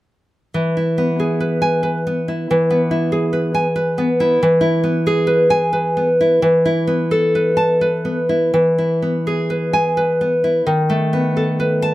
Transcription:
0.54 E3
0.77 E4
0.98 B3
1.20 G#4
1.40 B4
1.62 G#5
1.83 B4
2.07 B3
2.28 E4
2.51 E3
2.70 B3
2.91 E4
3.12 G#4
3.33 B4
3.54 G#5
3.76 B4
3.98 B3
4.20 E4
4.43 E3
4.61 E4
4.84 B3
5.07 G#4
5.27 B4
5.50 G#5
5.73 B4
5.97 B3
6.21 E4
6.42 E3
6.66 E4
6.87 B3
7.11 A4
7.35 B4
7.57 A5
7.81 B4
8.05 B3
8.29 E4
8.54 E3
8.78 E4
9.02 B3
9.27 G#4
9.50 B4
9.73 G#5
9.97 B4
10.21 B3
10.44 E4
10.67 D#3
10.90 A3
11.13 B3
11.37 A4
11.60 B4
11.82 A5

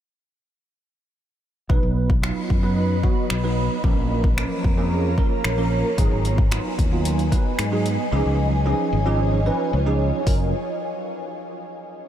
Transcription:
1.69 B1 F#3 B3 D#4 B4 D#5 B5, kick
1.83 B1
2.10 kick
2.23 F#3 B3 D#4 F4, finger snap
2.50 F#2, kick
2.63 F#3 B3 D#4 B4
3.03 F#3 B3 D#4 F#4, kick
3.30 B1, finger snap
3.44 F#3 B3 D#4 B4
3.84 A#1 F3 A#3 C#4 F4 A#4 C#5 A#5, kick
3.97 A#1
4.24 kick
4.37 F3 A#3 C#4 A#4, finger snap
4.64 F2, kick
4.78 F3 A#3 C#4 G#4
5.18 F3 A#3 C#4 A#4, kick
5.44 A#1, finger snap
5.58 F3 A#3 C#4 A#4
5.98 G#1 F#3 B3 D#4 G#4 B4 D#5 G#5, kick, closed hi-hat
6.11 G#1
6.25 closed hi-hat
6.38 kick
6.51 F#3 B3 D#4 F4, finger snap, closed hi-hat
6.79 D#2, kick, closed hi-hat
6.91 F#3 B3 D#4 F4
7.05 closed hi-hat
7.19 closed hi-hat
7.32 F#3 B3 D#4 B4, kick, closed hi-hat
7.59 G#2, finger snap, closed hi-hat
7.72 F#3 B3 D#4 G#4
7.86 closed hi-hat
8.12 C#2 F3 C#4 D#4 F4 G#4 C#5
8.26 C#2
8.66 F3 C#4 D#4 G#4
8.93 G#1
9.06 F3 C#4 D#4 G#4
9.46 F3 C#4 D#4 B4
9.73 C#2
9.86 F3 C#4 D#4 G#4
10.27 F#1 F#3 C#4 F4 A#4, kick, open hi-hat

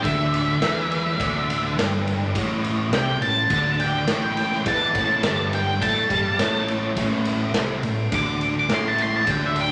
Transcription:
0.03 D2 D3 E5, kick, ride
0.34 ride
0.61 E2 E3, snare, ride
0.91 ride
1.19 D2 D3, kick, ride
1.50 ride
1.77 G1 G2, snare, ride
2.07 ride
2.34 A1 A2, kick, ride
2.64 ride
2.92 C2 C3 G5, snare, ride
3.21 A1 A2 A5, ride
3.50 D2 D3, kick, ride
3.80 G5, ride
4.08 A1 A2, snare, ride
4.37 ride
4.52 snare
4.66 E2 E3 A5, kick, ride
4.94 A1 A2, kick, ride
5.23 G1 G2, snare, ride
5.53 G5, ride
5.81 A2 A3 A5, kick, ride
6.10 G2 G3, kick, ride
6.38 A1 A2, snare, ride
6.68 ride
6.96 A1 A2, kick, ride
7.11 snare
7.25 ride
7.54 C2 C3, snare, ride
7.83 A1 A2, ride
8.12 D2 D3 D6, kick, ride
8.41 ride
8.60 D6
8.69 A1 A2, snare, ride
8.74 C6
8.88 A5
8.98 ride
9.02 C6
9.16 A5
9.26 D2 D3 G5, kick, ride
9.46 E5
9.56 ride
9.61 G5

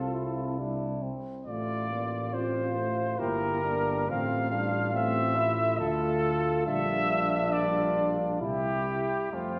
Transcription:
Already playing: C2 C4 F4 A4
0.14 E4
0.58 G3 D4 E4
1.02 C4
1.46 A1 A3 F4 D5
1.90 A#3
2.32 C4 F4 C5
2.76 A3
3.18 G1 A#3 E4 G4 A#4
3.63 A#3 D4
4.08 A1 A3 C4 F4 F5
4.52 G3 D4
4.94 A3 C4 E5
5.36 E4
5.78 D2 A3 F4 A4
6.67 A#1 G3 D4 F4 E5
7.53 G3 F4 D5
8.41 C2 G3 E4 G4
9.31 F2 A3 C4 F4

